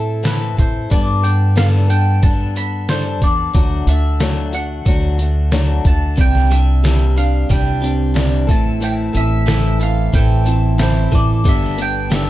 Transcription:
Already playing: A2 C4 E4 A4
0.23 A2 E3 C4 E4 A4 B4, snare, closed hi-hat
0.57 A2 C4 E4 A4 C5, kick, closed hi-hat
0.90 G2 G3 B3 D4 A4 D5, kick, closed hi-hat
1.22 B3 D4 A4 G5, closed hi-hat
1.56 G3 B3 D4 A4 F5, snare, closed hi-hat
1.74 snare
1.88 B3 D4 A4 G5, closed hi-hat
2.22 G2 G3 B3 D4 A4 A5, kick, closed hi-hat
2.55 B3 D4 A4 B5, closed hi-hat
2.88 G3 D4 A4 C5, snare, closed hi-hat
3.22 E2 B3 D4 A4 D5, kick, closed hi-hat
3.53 D2 D3 F#3 A3 D4 F#4, kick, closed hi-hat
3.87 D2 A3 D4 F#4 E5, closed hi-hat
4.20 D3 F#3 A3 D4 F#4, snare, closed hi-hat
4.52 A3 D4 F#4 F#5, closed hi-hat
4.85 D2 F#3 A3 D4 F#4, kick, closed hi-hat
5.18 A3 D4 F#4, closed hi-hat
5.51 D3 F#3 A3 D4 F#4, snare, closed hi-hat
5.84 D2 A3 D4 F#4 A5, kick, closed hi-hat
6.17 C2 C3 E3 G3 D4 G4 G5, kick, closed hi-hat
6.35 snare
6.50 G3 D4 G4 E5, closed hi-hat
6.84 C3 E3 G3 D4 G4, snare, closed hi-hat
7.16 G3 D4 G4 F5, closed hi-hat
7.49 C2 E3 G3 D4 G4 G5, kick, closed hi-hat
7.82 G3 C4 D4 G4, closed hi-hat
8.14 C3 E3 G3 D4 G4, snare, closed hi-hat
8.47 A1 A2 C4 E4 A4, kick, closed hi-hat
8.51 A5
8.80 A2 E3 C4 E4 A4 G5, closed hi-hat
9.13 A1 E3 C4 E4 A4 E5, closed hi-hat
9.46 A2 E3 C4 E4 A4, snare, closed hi-hat
9.79 C4 E4 A4 F5, closed hi-hat
10.12 A1 E3 C4 E4 A4 G5, kick, closed hi-hat
10.45 C4 E4 A4, closed hi-hat
10.78 A2 E3 C4 E4 A4 C5, snare, closed hi-hat
11.11 A1 E3 C4 E4 A4 D5, kick, closed hi-hat
11.44 G1 G3 B3 D4 A4, kick, closed hi-hat
11.49 E5
11.63 snare
11.78 B3 D4 A4, closed hi-hat
11.82 G5
12.11 G3 B3 D4 A4, snare, closed hi-hat
12.15 E5

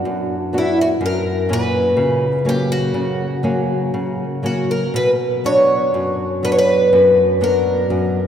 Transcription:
Already playing: B3 D4 F#4
0.05 F#2
0.53 B3 D4 F#4
0.58 E4
0.81 F#4
1.01 F#2
1.06 A#4
1.49 A#2 F#3 C#4
1.53 B4
1.97 C#3
2.45 F#3 A#3 C#4 G4
2.72 F#4
2.94 C#3
3.43 F#3 A#3 C#4
3.94 C#3
4.43 F#3 A#3 C#4 F#4
4.71 A#4
4.94 B2 B4
5.44 F#3 B3 D4 C#5
5.94 F#2
6.43 F#3 B3 D4 B4
6.52 C#5
6.59 B4
6.93 F#2
7.41 F#3 B3 D4 A#4
7.90 F#2

